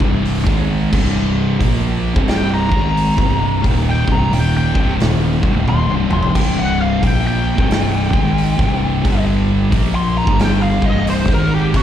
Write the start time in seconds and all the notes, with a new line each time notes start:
0.00 C1 C2 G2 C3, kick
0.25 open hi-hat
0.45 G#1 G#2 D#3 G#3, kick, snare
0.91 C1 C2 G2 C3, kick, crash
1.59 A#1 A#2 F3 A#3, kick, open hi-hat
2.15 C1 C2 G2 C3, kick
2.28 G5, snare, open hi-hat
2.54 A#5
2.70 G#1 G#2 D#3 G#3, kick
2.97 open hi-hat
3.17 C1 C2 G2 C3, kick, snare
3.62 D#1 D#2 A#2 D#3, kick, open hi-hat
3.90 G5
4.05 C1 C2 G2 C3, kick
4.12 A#5
4.31 D#1 D#2 A#2 D#3 G5, open hi-hat
4.57 G5
4.73 C1 C2 G2 C3, kick
4.99 D#1 D#2 A#2 D#3, snare, open hi-hat
5.42 C1 C2 G2, kick
5.54 D1 D2 A2
5.66 D#1 D#2 A#2 C6, high tom
5.88 C1 C2 G2
6.08 F1 F2 C3 F3, mid tom
6.13 C6
6.23 floor tom
6.33 C1 C2 G2 C3 G5, kick, crash
6.59 F#5
6.82 F5
7.01 A#1 A#2 F3 A#3 G5, kick, open hi-hat
7.27 G5
7.56 C1 C2 G2 C3, kick
7.71 snare, open hi-hat
8.12 G#1 G#2 D#3 G#3, kick
8.38 open hi-hat
8.57 C1 C2 G2 C3, kick, snare
9.04 G1 G2 D3 G3, kick, open hi-hat
9.71 A#1 A#2 F3 A#3, kick, open hi-hat
9.95 C6
10.18 A#5
10.26 G1 G2 D3 G3, kick
10.39 G5, snare, open hi-hat
10.63 F5
10.81 C1 C2 G2 C3, kick
10.86 D#5
11.07 C5, open hi-hat
11.27 G#1 G#2 D#3 G#3, kick, snare
11.33 A#4
11.55 G4
11.73 C1 C2 G2 C3 F#4, kick, crash